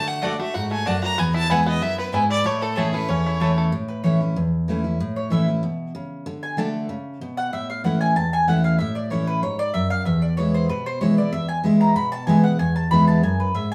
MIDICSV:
0, 0, Header, 1, 5, 480
1, 0, Start_track
1, 0, Key_signature, 3, "major"
1, 0, Tempo, 317292
1, 1787, Time_signature, 4, 2, 24, 8
1, 20793, End_track
2, 0, Start_track
2, 0, Title_t, "Fiddle"
2, 0, Program_c, 0, 110
2, 112, Note_on_c, 0, 78, 86
2, 362, Note_on_c, 0, 74, 72
2, 385, Note_off_c, 0, 78, 0
2, 583, Note_off_c, 0, 74, 0
2, 593, Note_on_c, 0, 76, 91
2, 814, Note_on_c, 0, 78, 86
2, 837, Note_off_c, 0, 76, 0
2, 1068, Note_off_c, 0, 78, 0
2, 1075, Note_on_c, 0, 80, 94
2, 1311, Note_on_c, 0, 81, 91
2, 1334, Note_off_c, 0, 80, 0
2, 1548, Note_off_c, 0, 81, 0
2, 1557, Note_on_c, 0, 82, 116
2, 1797, Note_on_c, 0, 80, 89
2, 1819, Note_off_c, 0, 82, 0
2, 2022, Note_off_c, 0, 80, 0
2, 2031, Note_on_c, 0, 81, 115
2, 2287, Note_on_c, 0, 78, 88
2, 2310, Note_off_c, 0, 81, 0
2, 2528, Note_off_c, 0, 78, 0
2, 2536, Note_on_c, 0, 75, 84
2, 2755, Note_on_c, 0, 76, 92
2, 2777, Note_off_c, 0, 75, 0
2, 2998, Note_off_c, 0, 76, 0
2, 3007, Note_on_c, 0, 71, 91
2, 3145, Note_off_c, 0, 71, 0
2, 3488, Note_on_c, 0, 74, 109
2, 3721, Note_on_c, 0, 73, 87
2, 3744, Note_off_c, 0, 74, 0
2, 3956, Note_on_c, 0, 69, 83
2, 3979, Note_off_c, 0, 73, 0
2, 4195, Note_on_c, 0, 68, 81
2, 4218, Note_off_c, 0, 69, 0
2, 4440, Note_on_c, 0, 71, 91
2, 4463, Note_off_c, 0, 68, 0
2, 4673, Note_on_c, 0, 73, 84
2, 4696, Note_off_c, 0, 71, 0
2, 5521, Note_off_c, 0, 73, 0
2, 20793, End_track
3, 0, Start_track
3, 0, Title_t, "Mandolin"
3, 0, Program_c, 1, 25
3, 328, Note_on_c, 1, 57, 93
3, 336, Note_on_c, 1, 66, 101
3, 341, Note_on_c, 1, 74, 100
3, 344, Note_on_c, 1, 78, 104
3, 475, Note_off_c, 1, 57, 0
3, 480, Note_off_c, 1, 66, 0
3, 482, Note_off_c, 1, 74, 0
3, 483, Note_off_c, 1, 78, 0
3, 1293, Note_on_c, 1, 57, 84
3, 1299, Note_on_c, 1, 66, 84
3, 1302, Note_on_c, 1, 74, 89
3, 1309, Note_on_c, 1, 78, 103
3, 1440, Note_off_c, 1, 57, 0
3, 1443, Note_off_c, 1, 66, 0
3, 1445, Note_off_c, 1, 74, 0
3, 1449, Note_off_c, 1, 78, 0
3, 2261, Note_on_c, 1, 59, 93
3, 2265, Note_on_c, 1, 64, 108
3, 2273, Note_on_c, 1, 71, 99
3, 2278, Note_on_c, 1, 80, 93
3, 2406, Note_off_c, 1, 59, 0
3, 2409, Note_off_c, 1, 64, 0
3, 2413, Note_off_c, 1, 71, 0
3, 2415, Note_off_c, 1, 80, 0
3, 3212, Note_on_c, 1, 59, 95
3, 3226, Note_on_c, 1, 64, 93
3, 3227, Note_on_c, 1, 71, 99
3, 3239, Note_on_c, 1, 80, 104
3, 3364, Note_off_c, 1, 59, 0
3, 3371, Note_off_c, 1, 64, 0
3, 3371, Note_off_c, 1, 71, 0
3, 3377, Note_off_c, 1, 80, 0
3, 4169, Note_on_c, 1, 57, 95
3, 4178, Note_on_c, 1, 64, 89
3, 4188, Note_on_c, 1, 73, 95
3, 4194, Note_on_c, 1, 81, 99
3, 4324, Note_off_c, 1, 57, 0
3, 4328, Note_off_c, 1, 64, 0
3, 4334, Note_off_c, 1, 73, 0
3, 4336, Note_off_c, 1, 81, 0
3, 5145, Note_on_c, 1, 57, 91
3, 5153, Note_on_c, 1, 64, 74
3, 5160, Note_on_c, 1, 73, 96
3, 5163, Note_on_c, 1, 81, 93
3, 5293, Note_off_c, 1, 57, 0
3, 5297, Note_off_c, 1, 64, 0
3, 5301, Note_off_c, 1, 73, 0
3, 5302, Note_off_c, 1, 81, 0
3, 5876, Note_on_c, 1, 71, 80
3, 6099, Note_off_c, 1, 71, 0
3, 6105, Note_on_c, 1, 73, 89
3, 6354, Note_off_c, 1, 73, 0
3, 7810, Note_on_c, 1, 73, 77
3, 8034, Note_off_c, 1, 73, 0
3, 8043, Note_on_c, 1, 76, 81
3, 8283, Note_off_c, 1, 76, 0
3, 9725, Note_on_c, 1, 80, 80
3, 9950, Note_off_c, 1, 80, 0
3, 9956, Note_on_c, 1, 81, 98
3, 10106, Note_off_c, 1, 81, 0
3, 11155, Note_on_c, 1, 78, 100
3, 11384, Note_off_c, 1, 78, 0
3, 11392, Note_on_c, 1, 76, 85
3, 11635, Note_off_c, 1, 76, 0
3, 11642, Note_on_c, 1, 77, 82
3, 11861, Note_off_c, 1, 77, 0
3, 11867, Note_on_c, 1, 78, 80
3, 12106, Note_off_c, 1, 78, 0
3, 12112, Note_on_c, 1, 80, 87
3, 12341, Note_off_c, 1, 80, 0
3, 12347, Note_on_c, 1, 81, 92
3, 12592, Note_off_c, 1, 81, 0
3, 12604, Note_on_c, 1, 80, 100
3, 12824, Note_off_c, 1, 80, 0
3, 12830, Note_on_c, 1, 78, 91
3, 13067, Note_off_c, 1, 78, 0
3, 13073, Note_on_c, 1, 77, 91
3, 13285, Note_off_c, 1, 77, 0
3, 13291, Note_on_c, 1, 76, 85
3, 13542, Note_off_c, 1, 76, 0
3, 13542, Note_on_c, 1, 74, 79
3, 13774, Note_off_c, 1, 74, 0
3, 13780, Note_on_c, 1, 73, 84
3, 14022, Note_off_c, 1, 73, 0
3, 14028, Note_on_c, 1, 71, 90
3, 14256, Note_off_c, 1, 71, 0
3, 14262, Note_on_c, 1, 73, 82
3, 14502, Note_off_c, 1, 73, 0
3, 14508, Note_on_c, 1, 74, 102
3, 14730, Note_on_c, 1, 76, 90
3, 14737, Note_off_c, 1, 74, 0
3, 14975, Note_off_c, 1, 76, 0
3, 14981, Note_on_c, 1, 77, 110
3, 15201, Note_off_c, 1, 77, 0
3, 15207, Note_on_c, 1, 76, 83
3, 15458, Note_off_c, 1, 76, 0
3, 15458, Note_on_c, 1, 74, 82
3, 15682, Note_off_c, 1, 74, 0
3, 15688, Note_on_c, 1, 73, 97
3, 15938, Note_off_c, 1, 73, 0
3, 15952, Note_on_c, 1, 72, 92
3, 16175, Note_off_c, 1, 72, 0
3, 16181, Note_on_c, 1, 71, 90
3, 16424, Note_off_c, 1, 71, 0
3, 16432, Note_on_c, 1, 72, 100
3, 16652, Note_off_c, 1, 72, 0
3, 16658, Note_on_c, 1, 73, 82
3, 16902, Note_off_c, 1, 73, 0
3, 16910, Note_on_c, 1, 74, 88
3, 17134, Note_on_c, 1, 76, 85
3, 17136, Note_off_c, 1, 74, 0
3, 17369, Note_off_c, 1, 76, 0
3, 17375, Note_on_c, 1, 80, 96
3, 17519, Note_off_c, 1, 80, 0
3, 17861, Note_on_c, 1, 82, 94
3, 18086, Note_off_c, 1, 82, 0
3, 18092, Note_on_c, 1, 83, 108
3, 18327, Note_off_c, 1, 83, 0
3, 18333, Note_on_c, 1, 81, 112
3, 18553, Note_off_c, 1, 81, 0
3, 18559, Note_on_c, 1, 80, 86
3, 18804, Note_off_c, 1, 80, 0
3, 18810, Note_on_c, 1, 78, 93
3, 19042, Note_off_c, 1, 78, 0
3, 19048, Note_on_c, 1, 80, 98
3, 19292, Note_off_c, 1, 80, 0
3, 19298, Note_on_c, 1, 81, 92
3, 19522, Note_off_c, 1, 81, 0
3, 19528, Note_on_c, 1, 83, 111
3, 19774, Note_off_c, 1, 83, 0
3, 19780, Note_on_c, 1, 81, 101
3, 20007, Note_off_c, 1, 81, 0
3, 20019, Note_on_c, 1, 80, 79
3, 20259, Note_off_c, 1, 80, 0
3, 20270, Note_on_c, 1, 71, 80
3, 20492, Note_off_c, 1, 71, 0
3, 20499, Note_on_c, 1, 76, 82
3, 20739, Note_off_c, 1, 76, 0
3, 20793, End_track
4, 0, Start_track
4, 0, Title_t, "Five-string banjo"
4, 0, Program_c, 2, 105
4, 0, Note_on_c, 2, 54, 56
4, 0, Note_on_c, 2, 57, 71
4, 295, Note_off_c, 2, 54, 0
4, 352, Note_on_c, 2, 69, 51
4, 539, Note_off_c, 2, 57, 0
4, 600, Note_on_c, 2, 57, 67
4, 821, Note_on_c, 2, 66, 68
4, 1028, Note_off_c, 2, 69, 0
4, 1057, Note_off_c, 2, 57, 0
4, 1075, Note_on_c, 2, 57, 61
4, 1303, Note_on_c, 2, 62, 54
4, 1504, Note_off_c, 2, 66, 0
4, 1552, Note_on_c, 2, 66, 56
4, 1742, Note_off_c, 2, 57, 0
4, 1785, Note_off_c, 2, 66, 0
4, 1785, Note_on_c, 2, 59, 79
4, 1786, Note_off_c, 2, 62, 0
4, 2032, Note_on_c, 2, 64, 67
4, 2261, Note_off_c, 2, 64, 0
4, 2267, Note_on_c, 2, 64, 58
4, 2468, Note_off_c, 2, 59, 0
4, 2517, Note_on_c, 2, 59, 75
4, 2750, Note_off_c, 2, 64, 0
4, 2756, Note_on_c, 2, 64, 62
4, 2983, Note_off_c, 2, 59, 0
4, 3001, Note_on_c, 2, 59, 58
4, 3238, Note_off_c, 2, 64, 0
4, 3238, Note_on_c, 2, 64, 59
4, 3483, Note_off_c, 2, 64, 0
4, 3483, Note_on_c, 2, 64, 52
4, 3668, Note_off_c, 2, 59, 0
4, 3717, Note_on_c, 2, 57, 77
4, 3969, Note_on_c, 2, 69, 61
4, 4199, Note_off_c, 2, 64, 0
4, 4205, Note_on_c, 2, 64, 56
4, 4397, Note_off_c, 2, 57, 0
4, 4450, Note_on_c, 2, 57, 69
4, 4633, Note_off_c, 2, 69, 0
4, 4692, Note_on_c, 2, 61, 63
4, 4881, Note_off_c, 2, 64, 0
4, 4938, Note_on_c, 2, 64, 57
4, 5114, Note_off_c, 2, 57, 0
4, 5165, Note_on_c, 2, 57, 72
4, 5365, Note_off_c, 2, 61, 0
4, 5412, Note_on_c, 2, 69, 51
4, 5599, Note_off_c, 2, 64, 0
4, 5642, Note_off_c, 2, 69, 0
4, 5643, Note_off_c, 2, 57, 0
4, 20793, End_track
5, 0, Start_track
5, 0, Title_t, "Steel-string acoustic guitar"
5, 0, Program_c, 3, 25
5, 0, Note_on_c, 3, 50, 104
5, 328, Note_off_c, 3, 50, 0
5, 346, Note_on_c, 3, 50, 55
5, 353, Note_on_c, 3, 57, 60
5, 368, Note_on_c, 3, 62, 66
5, 379, Note_on_c, 3, 66, 65
5, 576, Note_off_c, 3, 66, 0
5, 583, Note_off_c, 3, 50, 0
5, 586, Note_off_c, 3, 57, 0
5, 594, Note_off_c, 3, 62, 0
5, 595, Note_on_c, 3, 66, 67
5, 628, Note_on_c, 3, 62, 45
5, 815, Note_off_c, 3, 66, 0
5, 832, Note_off_c, 3, 62, 0
5, 835, Note_on_c, 3, 44, 81
5, 1288, Note_off_c, 3, 44, 0
5, 1316, Note_on_c, 3, 42, 87
5, 1770, Note_off_c, 3, 42, 0
5, 1796, Note_on_c, 3, 40, 93
5, 2260, Note_on_c, 3, 52, 54
5, 2275, Note_on_c, 3, 56, 65
5, 2292, Note_on_c, 3, 59, 71
5, 2297, Note_on_c, 3, 64, 67
5, 2709, Note_off_c, 3, 40, 0
5, 2723, Note_off_c, 3, 52, 0
5, 2731, Note_off_c, 3, 56, 0
5, 2739, Note_off_c, 3, 59, 0
5, 2741, Note_off_c, 3, 64, 0
5, 2745, Note_on_c, 3, 42, 77
5, 3207, Note_off_c, 3, 42, 0
5, 3217, Note_on_c, 3, 44, 76
5, 3683, Note_off_c, 3, 44, 0
5, 3695, Note_on_c, 3, 45, 102
5, 4185, Note_on_c, 3, 52, 57
5, 4190, Note_on_c, 3, 57, 68
5, 4205, Note_on_c, 3, 61, 64
5, 4222, Note_on_c, 3, 64, 67
5, 4409, Note_off_c, 3, 64, 0
5, 4427, Note_on_c, 3, 64, 66
5, 4430, Note_off_c, 3, 52, 0
5, 4432, Note_off_c, 3, 57, 0
5, 4440, Note_off_c, 3, 61, 0
5, 4463, Note_on_c, 3, 61, 51
5, 4621, Note_off_c, 3, 45, 0
5, 4659, Note_off_c, 3, 64, 0
5, 4666, Note_on_c, 3, 40, 93
5, 4677, Note_off_c, 3, 61, 0
5, 5149, Note_on_c, 3, 52, 56
5, 5168, Note_on_c, 3, 57, 58
5, 5176, Note_on_c, 3, 61, 57
5, 5185, Note_on_c, 3, 64, 71
5, 5587, Note_off_c, 3, 40, 0
5, 5612, Note_off_c, 3, 52, 0
5, 5621, Note_off_c, 3, 57, 0
5, 5625, Note_off_c, 3, 61, 0
5, 5630, Note_off_c, 3, 64, 0
5, 5632, Note_on_c, 3, 45, 95
5, 6108, Note_on_c, 3, 52, 80
5, 6120, Note_on_c, 3, 57, 72
5, 6135, Note_on_c, 3, 61, 86
5, 6139, Note_on_c, 3, 64, 91
5, 6344, Note_off_c, 3, 64, 0
5, 6353, Note_off_c, 3, 52, 0
5, 6359, Note_off_c, 3, 57, 0
5, 6362, Note_on_c, 3, 64, 62
5, 6366, Note_off_c, 3, 61, 0
5, 6393, Note_on_c, 3, 61, 55
5, 6551, Note_off_c, 3, 45, 0
5, 6588, Note_off_c, 3, 64, 0
5, 6601, Note_on_c, 3, 40, 88
5, 6603, Note_off_c, 3, 61, 0
5, 7080, Note_on_c, 3, 52, 76
5, 7097, Note_on_c, 3, 57, 92
5, 7106, Note_on_c, 3, 61, 87
5, 7121, Note_on_c, 3, 64, 87
5, 7304, Note_off_c, 3, 64, 0
5, 7319, Note_off_c, 3, 52, 0
5, 7322, Note_on_c, 3, 64, 58
5, 7327, Note_off_c, 3, 57, 0
5, 7332, Note_off_c, 3, 61, 0
5, 7356, Note_on_c, 3, 61, 47
5, 7515, Note_off_c, 3, 40, 0
5, 7548, Note_off_c, 3, 64, 0
5, 7565, Note_off_c, 3, 61, 0
5, 7570, Note_on_c, 3, 45, 96
5, 8022, Note_on_c, 3, 52, 86
5, 8037, Note_on_c, 3, 57, 79
5, 8053, Note_on_c, 3, 61, 88
5, 8064, Note_on_c, 3, 64, 95
5, 8266, Note_off_c, 3, 64, 0
5, 8270, Note_off_c, 3, 52, 0
5, 8277, Note_off_c, 3, 57, 0
5, 8284, Note_on_c, 3, 64, 62
5, 8285, Note_off_c, 3, 61, 0
5, 8319, Note_on_c, 3, 61, 53
5, 8479, Note_off_c, 3, 45, 0
5, 8508, Note_off_c, 3, 64, 0
5, 8515, Note_on_c, 3, 47, 81
5, 8526, Note_off_c, 3, 61, 0
5, 8974, Note_off_c, 3, 47, 0
5, 8997, Note_on_c, 3, 49, 84
5, 9455, Note_off_c, 3, 49, 0
5, 9471, Note_on_c, 3, 50, 97
5, 9921, Note_off_c, 3, 50, 0
5, 9939, Note_on_c, 3, 50, 77
5, 9954, Note_on_c, 3, 57, 100
5, 9963, Note_on_c, 3, 62, 95
5, 9976, Note_on_c, 3, 66, 86
5, 10405, Note_off_c, 3, 50, 0
5, 10412, Note_off_c, 3, 57, 0
5, 10417, Note_off_c, 3, 62, 0
5, 10424, Note_off_c, 3, 66, 0
5, 10424, Note_on_c, 3, 49, 82
5, 10887, Note_off_c, 3, 49, 0
5, 10913, Note_on_c, 3, 47, 93
5, 11371, Note_off_c, 3, 47, 0
5, 11388, Note_on_c, 3, 45, 93
5, 11859, Note_on_c, 3, 52, 83
5, 11880, Note_on_c, 3, 57, 80
5, 11890, Note_on_c, 3, 61, 86
5, 11895, Note_on_c, 3, 64, 88
5, 12304, Note_off_c, 3, 45, 0
5, 12323, Note_off_c, 3, 52, 0
5, 12334, Note_off_c, 3, 57, 0
5, 12338, Note_off_c, 3, 61, 0
5, 12341, Note_off_c, 3, 64, 0
5, 12344, Note_on_c, 3, 40, 84
5, 12819, Note_on_c, 3, 52, 77
5, 12836, Note_on_c, 3, 57, 86
5, 12843, Note_on_c, 3, 61, 85
5, 12856, Note_on_c, 3, 64, 92
5, 13261, Note_off_c, 3, 40, 0
5, 13282, Note_off_c, 3, 52, 0
5, 13290, Note_off_c, 3, 57, 0
5, 13294, Note_off_c, 3, 61, 0
5, 13301, Note_off_c, 3, 64, 0
5, 13319, Note_on_c, 3, 45, 92
5, 13770, Note_on_c, 3, 52, 80
5, 13788, Note_on_c, 3, 57, 78
5, 13796, Note_on_c, 3, 61, 93
5, 13812, Note_on_c, 3, 64, 95
5, 14228, Note_off_c, 3, 45, 0
5, 14237, Note_off_c, 3, 52, 0
5, 14245, Note_off_c, 3, 57, 0
5, 14250, Note_off_c, 3, 61, 0
5, 14258, Note_off_c, 3, 64, 0
5, 14264, Note_on_c, 3, 44, 93
5, 14723, Note_off_c, 3, 44, 0
5, 14741, Note_on_c, 3, 42, 89
5, 15201, Note_off_c, 3, 42, 0
5, 15222, Note_on_c, 3, 40, 94
5, 15695, Note_on_c, 3, 52, 78
5, 15710, Note_on_c, 3, 56, 78
5, 15722, Note_on_c, 3, 59, 84
5, 15733, Note_on_c, 3, 64, 100
5, 16137, Note_off_c, 3, 40, 0
5, 16157, Note_off_c, 3, 52, 0
5, 16164, Note_off_c, 3, 56, 0
5, 16170, Note_off_c, 3, 59, 0
5, 16176, Note_off_c, 3, 64, 0
5, 16179, Note_on_c, 3, 47, 92
5, 16652, Note_on_c, 3, 52, 94
5, 16660, Note_on_c, 3, 56, 87
5, 16677, Note_on_c, 3, 59, 93
5, 16682, Note_on_c, 3, 64, 103
5, 16877, Note_off_c, 3, 64, 0
5, 16895, Note_on_c, 3, 64, 53
5, 16896, Note_off_c, 3, 52, 0
5, 16901, Note_off_c, 3, 56, 0
5, 16909, Note_off_c, 3, 59, 0
5, 16936, Note_on_c, 3, 59, 52
5, 17094, Note_off_c, 3, 47, 0
5, 17125, Note_off_c, 3, 64, 0
5, 17133, Note_on_c, 3, 40, 106
5, 17146, Note_off_c, 3, 59, 0
5, 17602, Note_on_c, 3, 52, 89
5, 17613, Note_on_c, 3, 56, 92
5, 17624, Note_on_c, 3, 59, 92
5, 17635, Note_on_c, 3, 64, 106
5, 18050, Note_off_c, 3, 40, 0
5, 18068, Note_off_c, 3, 52, 0
5, 18073, Note_off_c, 3, 56, 0
5, 18079, Note_off_c, 3, 59, 0
5, 18085, Note_off_c, 3, 64, 0
5, 18088, Note_on_c, 3, 47, 82
5, 18565, Note_on_c, 3, 52, 99
5, 18584, Note_on_c, 3, 56, 86
5, 18595, Note_on_c, 3, 59, 102
5, 18600, Note_on_c, 3, 64, 103
5, 18786, Note_off_c, 3, 64, 0
5, 18804, Note_on_c, 3, 64, 55
5, 18811, Note_off_c, 3, 52, 0
5, 18820, Note_off_c, 3, 56, 0
5, 18826, Note_off_c, 3, 59, 0
5, 18843, Note_on_c, 3, 59, 53
5, 19006, Note_off_c, 3, 47, 0
5, 19038, Note_off_c, 3, 64, 0
5, 19052, Note_on_c, 3, 40, 101
5, 19057, Note_off_c, 3, 59, 0
5, 19535, Note_on_c, 3, 52, 82
5, 19549, Note_on_c, 3, 56, 88
5, 19553, Note_on_c, 3, 59, 94
5, 19568, Note_on_c, 3, 64, 96
5, 19968, Note_off_c, 3, 40, 0
5, 19993, Note_off_c, 3, 52, 0
5, 20000, Note_off_c, 3, 56, 0
5, 20002, Note_off_c, 3, 59, 0
5, 20009, Note_off_c, 3, 64, 0
5, 20019, Note_on_c, 3, 42, 93
5, 20474, Note_off_c, 3, 42, 0
5, 20490, Note_on_c, 3, 44, 91
5, 20793, Note_off_c, 3, 44, 0
5, 20793, End_track
0, 0, End_of_file